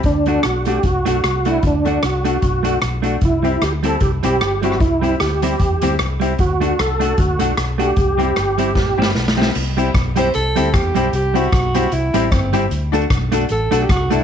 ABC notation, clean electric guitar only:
X:1
M:4/4
L:1/8
Q:"Swing" 1/4=152
K:Clyd
V:1 name="Clean electric guitar"
z [A,DF] z [A,DF] z [A,DF] z [A,DF] | z [A,DF] z [A,DF] z [A,DF] z [A,DF] | z [G,CE] z [G,CE] z [G,CE] z [G,CE] | z [G,CE] z [G,CE] z [G,CE] z [G,CE] |
z [A,DF] z [A,DF] z [A,DF] z [A,DF] | z [G,CE] z [G,CE] z [G,CE] z [G,CE] | z [G,CE] z [G,CE] z [G,CE] z [G,CE] | z [G,CE] z [G,CE] z [G,CE] z [G,CE] |
z [A,DF] z [A,DF] z [A,DF] z [A,DF] |]